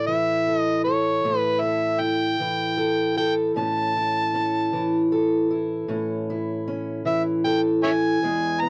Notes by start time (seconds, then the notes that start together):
Already playing: A2 E4 A4
0.07 E3 E5
0.47 A4
0.58 D#5
0.84 A4 C#5
1.24 A2 E4
1.38 B4
1.61 A4 E5
2.00 E4 G5
2.40 E3
2.77 A4
3.17 A4 G5
3.56 A2 C#4 A5
3.96 E4
4.34 C#4
4.73 E3
5.12 A4
5.51 E4
5.88 A2 C#4
6.30 E4
6.68 C#4
7.05 E3 E5
7.45 A4 G5
7.83 E4 C#5 E5 G#5
8.23 E2 G#3
8.60 B3 A#5